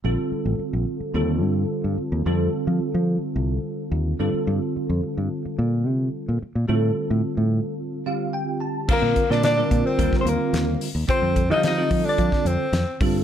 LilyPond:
<<
  \new Staff \with { instrumentName = "Hollow-body jazz guitar" } { \time 4/4 \key f \mixolydian \tempo 4 = 109 r1 | r1 | r1 | r1 |
bes'8. d''16 d''8. c''8~ c''32 c''32 bes'4 r8 | c''8. ees''16 ees''8. d''8. c''4 r8 | }
  \new Staff \with { instrumentName = "Tenor saxophone" } { \time 4/4 \key f \mixolydian r1 | r1 | r1 | r1 |
bes8. d'16 d'8. c'8~ c'32 c'32 bes4 r8 | c'8. ees'16 ees'8. d'8. c'4 r8 | }
  \new Staff \with { instrumentName = "Tine electric piano" } { \time 4/4 \key f \mixolydian << { r1 | r1 | r1 | r2 r8 f''8 g''8 a''8 |
r1 | r1 | } \\ { <d g c' f' a'>2 <d g c' f' a'>2 | <d g c' f' a'>2.~ <d g c' f' a'>8 <d g c' f' a'>8~ | <d g c' f' a'>2.~ <d g c' f' a'>8 r8 | <d g c' f' a'>2~ <d g c' f' a'>8 <d g c' f' g'>4. |
<d g c' f' bes'>8 r16 <d g c' f' bes'>8 <d g c' f' bes'>8. <d g c' f' bes'>4. r8 | <d g c' f' a'>8 r16 <d g c' f' g'>8 <d g c' f' a'>4. r8. <d g c' f' a'>8 | } >> }
  \new Staff \with { instrumentName = "Fingered electric bass" } { \clef bass \time 4/4 \key f \mixolydian bes,,16 r8 a,,16 r16 bes,,16 r8 ees,8 g,8 r16 g,16 r16 ees,16 | f,8 r16 f16 r16 f8 r16 c,8 r8 ees,8 g,16 r16 | g,16 r8 f,16 r16 g,16 r8 bes,8 c8 r16 bes,16 r16 bes,16 | a,8 r16 a,16 r16 a,8 r2 r16 |
r16 bes,16 r16 bes,8. bes,16 r16 ees,16 r16 ees,16 r16 ees,8 r16 ees,16 | r16 f,8 f8. f16 r16 f16 r16 f,16 r16 f,16 r16 g,8 | }
  \new DrumStaff \with { instrumentName = "Drums" } \drummode { \time 4/4 r4 r4 r4 r4 | r4 r4 r4 r4 | r4 r4 r4 r4 | r4 r4 r4 r4 |
<cymc bd>8 <hh bd>16 sn16 <hh sn>8 <hh bd>8 <hh bd>16 <bd sn>16 hh8 <hh sn>8 hho8 | <hh bd>8 <hh bd>8 <hh sn>8 <hho bd>8 <hh bd>16 <bd sn>16 hh8 <hh sn>8 <hho bd>8 | }
>>